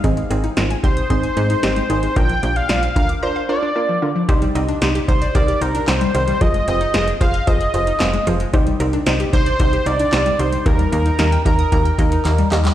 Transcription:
<<
  \new Staff \with { instrumentName = "Analog synth lead" } { \time 4/4 \key c \minor \tempo 4 = 113 r4. c''2~ c''8 | g''8. f''8. f''8 c''8 d''4 r8 | r4. c''8 d''8 bes'8 c''4 | ees''8 ees''8 ees''8 f''8 ees''4. r8 |
r4. c''4 d''4 c''8 | bes'4. bes'2 r8 | }
  \new Staff \with { instrumentName = "Synth pluck" } { \time 4/4 \key c \minor <c' ees' aes'>8 <c' ees' aes'>8 <c' ees' f'>8 <c' ees' g'>8 <c' ees' aes'>8 <c' ees' aes'>8 <c' ees' g'>8 <c' ees' aes'>8 | <d' f' bes'>8 <d' f' g'>8 <d' f' c''>8 <d' f' bes'>8 <d' f' bes'>8 <d' f' bes'>8 <d' f' bes'>8 <d' f' bes'>8 | <ees' g' c''>8 <ees' g' ees''>8 <ees' g' c''>8 <ees' g' c''>8 <ees' g' bes'>8 <ees' g' c''>8 <ees' g' c''>8 <ees' g' c''>8 | <f' aes' c''>8 <f' aes' c''>8 <f' aes' c''>8 <f' aes' c''>8 <f' aes' c''>8 <f' aes' c''>8 <f' aes' c''>8 <f' aes' c''>8 |
<ees' g' c''>8 <ees' g' bes'>8 <ees' g' c''>8 <ees' g' c''>8 <ees' g' c''>8 <ees' g' c''>8 <ees' g' c''>8 <ees' g' c''>8 | <ees' g' bes'>8 <ees' g' bes'>8 <ees' g' bes'>8 <ees' g' bes'>8 <ees' g' bes'>8 <ees' g' bes'>8 <ees' g' bes'>8 <ees' g' bes'>8 | }
  \new Staff \with { instrumentName = "Synth arpeggio sound" } { \time 4/4 \key c \minor ees16 aes16 c'16 ees'16 ees''16 aes''16 c'''16 ees'''16 c'''16 aes''16 ees''16 ees'16 c'16 aes16 ees16 aes16 | d16 f16 bes16 d'16 d''16 f''16 bes''16 d'''16 bes''16 f''16 d''16 d'16 bes16 f16 d16 f16 | ees16 g16 c'16 d'16 ees'16 g'16 c''16 d''16 c''16 g'16 ees'16 d'16 c'16 g16 ees16 g16 | f16 aes16 c'16 ees'16 f'16 aes'16 c''16 ees''16 c''16 aes'16 f'16 ees'16 c'16 aes16 f16 aes16 |
ees16 g16 c'16 d'16 ees'16 g'16 c''16 d''16 c''16 g'16 ees'16 d'16 c'16 g16 ees16 g16 | ees16 g16 bes16 ees'16 ees''16 g''16 bes''16 ees'''16 bes''16 g''16 ees''16 ees'16 bes16 g16 ees16 g16 | }
  \new Staff \with { instrumentName = "FM bass" } { \clef bass \time 4/4 \key c \minor aes,,8 aes,,8 aes,,8 c,8 aes,,8 aes,8 aes,,8 aes,,8 | bes,,8 bes,,8 bes,,8 d,8 r2 | c,8 c,8 c,8 c,8 c,8 c,8 c,8 c,8 | f,,8 f,,8 f,,8 f,,8 f,,8 f,,8 f,,8 f,,8 |
c,8 c,8 c,8 c,8 c,8 c,8 c,8 c,8 | ees,8 ees,8 ees,8 ees,8 ees,8 ees,8 ees,8 ees,8 | }
  \new DrumStaff \with { instrumentName = "Drums" } \drummode { \time 4/4 <hh bd>16 hh16 hh16 hh16 <hh sn>16 hh16 <hh bd>16 hh16 <hh bd>16 hh16 hh16 hh16 <hh sn>16 hh16 hh16 hh16 | <hh bd>16 hh16 hh16 hh16 <hh sn>16 hh16 <hh bd>16 hh16 r4 r4 | <hh bd>16 hh16 hh16 hh16 <hh sn>16 hh16 <hh bd>16 hh16 <hh bd>16 hh16 hh16 hh16 <hc hh sn>16 hh16 hh16 hh16 | <hh bd>16 hh16 hh16 hh16 <hh sn>16 hh16 <hh bd>16 hh16 <hh bd>16 hh16 hh16 hh16 <hc hh sn>16 hh16 hh16 hh16 |
<hh bd>16 hh16 hh16 hh16 <hh sn>16 hh16 <hh bd>16 hh16 <hh bd>16 hh16 hh16 hh16 <hc hh sn>16 hh16 hh16 hh16 | <hh bd>16 hh16 hh16 hh16 <hh sn>16 hh16 <hh bd>16 hh16 <hh bd>16 hh16 <hh bd>16 hh16 <hc hh>16 hh16 <hc hh>16 <hc hh>16 | }
>>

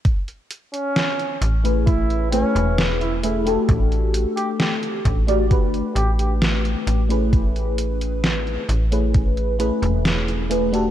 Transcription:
<<
  \new Staff \with { instrumentName = "FM electric piano" } { \time 4/4 \key a \major \tempo 4 = 66 r4. r16 <a cis' e' gis' b'>8. <a cis' e' gis' b'>4 <a cis' e' gis' b'>16 <a d' fis' g' a'>16~ | <a d' fis' g' a'>4.~ <a d' fis' g' a'>16 <a d' fis' g' d''>16 <a d' fis' g' b'>4.~ <a d' fis' g' b'>16 <a cis' e' gis' b'>16~ | <a cis' e' gis' b'>4.~ <a cis' e' gis' b'>16 <a cis' e' gis' b'>8. <a cis' e' gis' b'>4 <a cis' e' gis' b'>16 <a d' fis' g' a'>16 | }
  \new Staff \with { instrumentName = "Flugelhorn" } { \time 4/4 \key a \major r8. cis'8. r8 e'8 cis'8 r16 e'16 e'16 r16 | r8. g'16 g'16 r4 r16 g'16 g'16 r4 | r1 | }
  \new Staff \with { instrumentName = "FM bass" } { \clef bass \time 4/4 \key a \major r4. a,,4 r16 e,,4 r16 | a,,8 r4 a,,8 g,,16 r16 a,,8. r16 a,,8~ | a,,4~ a,,16 r16 a,,4 r16 e,,4~ e,,16 | }
  \new DrumStaff \with { instrumentName = "Drums" } \drummode { \time 4/4 <hh bd>16 hh16 hh16 hh16 <hh sn>16 hh16 hh16 hh16 <hh bd>16 hh16 hh16 hh16 <hh sn>16 hh16 hh16 hh16 | <hh bd>16 hh16 hh16 hh16 <hh sn>16 hh16 <hh bd>16 hh16 <hh bd>16 hh16 hh16 hh16 <hh sn>16 hh16 hh16 hh16 | <hh bd>16 hh16 hh16 hh16 <hh sn>16 hh16 hh16 hh16 <hh bd>16 hh16 hh16 hh16 <hh sn>16 hh16 hh16 hh16 | }
>>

